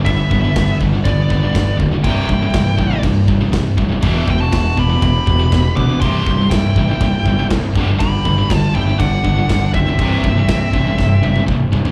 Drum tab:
CC |x---x---x---x---|x---x---x---x---|x---x---x---x---|x---x---x---x---|
SD |----o-------o---|----o-------o---|----o-------o---|----o-------o---|
T1 |----------------|----------------|----------------|----------------|
T2 |----------------|----------------|----------------|----------------|
FT |----------------|----------------|----------------|----------------|
BD |o-o-o-o-o-o-o-o-|o-o-o-o-o-o-o-o-|o-o-o-o-o-o-o-o-|o-o-o-o-o-o-o-o-|

CC |x---x---x---x---|x---x-----------|
SD |----o-------o---|----o---o-------|
T1 |----------------|----------oo----|
T2 |----------------|------------o---|
FT |----------------|--------------oo|
BD |o-o-o-o-o-o-o-o-|o-o-o-o-o---o---|